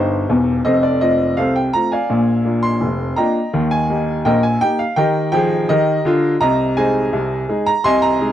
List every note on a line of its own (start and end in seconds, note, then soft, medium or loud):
0.00 0.24 G1 medium
0.00 0.24 G2 medium
0.00 0.62 D#4 medium
0.00 0.62 G4 medium
0.00 0.64 C5 medium
0.30 0.58 E1 medium
0.30 0.58 E2 medium
0.65 0.96 F1 medium
0.65 0.96 F2 medium
0.65 0.82 A4 medium
0.65 0.82 C5 medium
0.65 0.83 D#5 loud
0.83 1.01 D5 medium
1.01 1.21 A3 medium
1.01 1.22 C4 soft
1.01 1.22 F4 medium
1.01 1.37 D#5 medium
1.37 1.68 C2 medium
1.37 1.68 C3 medium
1.37 1.55 A4 medium
1.37 1.55 C5 medium
1.37 1.55 F5 medium
1.56 1.73 G5 medium
1.73 1.94 A3 medium
1.73 1.94 C4 soft
1.73 1.94 F4 medium
1.73 1.91 A#5 loud
1.92 2.60 D5 medium
1.92 2.60 F5 medium
1.92 2.64 G#5 medium
2.10 2.40 A#1 medium
2.10 2.40 A#2 medium
2.45 2.65 A#3 medium
2.45 2.65 D4 medium
2.45 2.66 F4 medium
2.63 3.17 C6 loud
2.81 3.12 F1 medium
2.81 3.12 F2 medium
3.16 3.37 A#3 medium
3.16 3.37 D4 medium
3.16 3.37 F4 medium
3.16 3.68 D#5 medium
3.16 3.68 G5 medium
3.16 3.71 A#5 medium
3.53 3.84 D#2 medium
3.53 3.84 D#3 medium
3.71 4.25 G#5 loud
3.90 4.09 A#3 medium
3.90 4.10 D#4 medium
3.90 4.10 G4 medium
4.25 4.56 A#1 medium
4.25 4.56 A#2 medium
4.25 4.42 A#4 medium
4.25 4.42 D#5 medium
4.25 4.43 G5 loud
4.43 4.61 G#5 loud
4.61 4.81 A#3 medium
4.61 4.81 D#4 medium
4.61 4.82 G4 medium
4.61 4.79 G5 loud
4.79 4.97 F5 medium
4.96 5.26 D#3 medium
4.96 5.27 G4 medium
4.96 5.31 A#4 medium
4.96 5.31 D#5 medium
4.96 5.30 G5 loud
5.32 5.61 F3 medium
5.32 5.63 G#4 loud
5.32 5.68 G5 loud
5.69 5.98 D#3 medium
5.69 6.38 G4 medium
5.69 6.38 A#4 medium
5.69 6.40 D#5 loud
6.05 6.34 D3 medium
6.05 6.35 F4 loud
6.41 6.72 C2 medium
6.41 6.71 C3 medium
6.41 6.75 D#5 medium
6.41 6.77 A#5 loud
6.77 6.97 G#3 medium
6.77 6.97 D#4 medium
6.77 6.97 G#4 medium
6.77 7.63 C5 medium
6.77 7.63 D#5 medium
6.77 7.67 G#5 loud
7.13 7.43 C2 medium
7.13 7.43 C3 medium
7.49 7.68 G#3 medium
7.49 7.69 D#4 medium
7.49 7.69 G#4 medium
7.66 7.85 A#5 loud
7.84 8.16 C2 medium
7.84 8.15 C3 loud
7.84 8.02 D#5 loud
7.84 8.02 G#5 loud
7.84 8.03 C6 loud
8.02 8.32 A#5 loud
8.21 8.32 G#3 medium
8.21 8.32 D#4 medium
8.21 8.32 G#4 medium